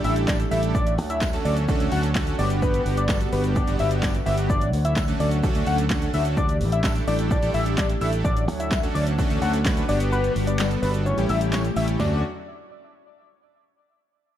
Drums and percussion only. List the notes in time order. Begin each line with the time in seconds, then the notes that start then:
0.04 open hi-hat, shaker
0.16 closed hi-hat, shaker
0.28 kick, snare, clap, tambourine, shaker
0.40 closed hi-hat, shaker
0.51 open hi-hat, shaker
0.63 closed hi-hat, shaker
0.75 kick, shaker
0.87 closed hi-hat, shaker
0.99 open hi-hat, shaker
1.10 closed hi-hat, shaker
1.21 kick, snare, clap, tambourine, shaker
1.33 closed hi-hat, shaker
1.45 open hi-hat, shaker
1.57 closed hi-hat, shaker
1.68 kick, shaker
1.80 closed hi-hat, shaker
1.92 open hi-hat, shaker
2.03 closed hi-hat, shaker
2.15 kick, snare, clap, tambourine, shaker
2.27 closed hi-hat, shaker
2.39 open hi-hat, shaker
2.50 closed hi-hat, shaker
2.62 kick, shaker
2.74 closed hi-hat, shaker
2.86 open hi-hat, shaker
2.97 closed hi-hat, shaker
3.09 kick, snare, clap, tambourine, shaker
3.21 closed hi-hat, shaker
3.33 open hi-hat, shaker
3.44 closed hi-hat, shaker
3.56 kick, shaker
3.67 closed hi-hat, shaker
3.79 open hi-hat, shaker
3.91 closed hi-hat, shaker
4.03 kick, snare, clap, tambourine, shaker
4.15 closed hi-hat, shaker
4.26 open hi-hat, shaker
4.38 closed hi-hat, shaker
4.50 kick, shaker
4.61 closed hi-hat, shaker
4.73 open hi-hat, shaker
4.85 closed hi-hat, shaker
4.96 kick, snare, clap, tambourine, shaker
5.08 closed hi-hat, shaker
5.20 open hi-hat, shaker
5.31 closed hi-hat, shaker
5.43 kick, shaker
5.55 closed hi-hat, shaker
5.66 open hi-hat, shaker
5.78 closed hi-hat, shaker
5.90 kick, snare, clap, tambourine, shaker
6.02 closed hi-hat, shaker
6.14 open hi-hat, shaker
6.25 closed hi-hat, shaker
6.37 kick, shaker
6.49 closed hi-hat, shaker
6.61 open hi-hat, shaker
6.72 closed hi-hat, shaker
6.84 kick, snare, clap, tambourine, shaker
6.96 closed hi-hat, shaker
7.08 open hi-hat, shaker
7.19 closed hi-hat, shaker
7.31 kick, shaker
7.43 closed hi-hat, shaker
7.54 open hi-hat, shaker
7.66 closed hi-hat, shaker
7.78 kick, snare, clap, tambourine, shaker
7.90 closed hi-hat, shaker
8.01 open hi-hat, shaker
8.13 closed hi-hat, shaker
8.25 kick, shaker
8.37 closed hi-hat, shaker
8.49 open hi-hat, shaker
8.60 closed hi-hat, shaker
8.71 kick, snare, clap, tambourine, shaker
8.83 closed hi-hat, shaker
8.95 open hi-hat, shaker
9.07 closed hi-hat, shaker
9.19 kick, shaker
9.30 closed hi-hat, shaker
9.42 open hi-hat, shaker
9.53 closed hi-hat, shaker
9.65 kick, snare, clap, tambourine, shaker
9.77 closed hi-hat, shaker
9.89 open hi-hat, shaker
10.00 closed hi-hat, shaker
10.12 shaker
10.24 closed hi-hat, shaker
10.36 open hi-hat, shaker
10.47 closed hi-hat, shaker
10.59 snare, clap, tambourine, shaker
10.71 closed hi-hat, shaker
10.83 open hi-hat, shaker
10.94 closed hi-hat, shaker
11.06 shaker
11.18 closed hi-hat, shaker
11.29 open hi-hat, shaker
11.41 closed hi-hat, shaker
11.53 snare, clap, tambourine, shaker
11.65 closed hi-hat, shaker
11.76 open hi-hat, shaker
11.88 closed hi-hat, shaker
12.00 snare, floor tom, tambourine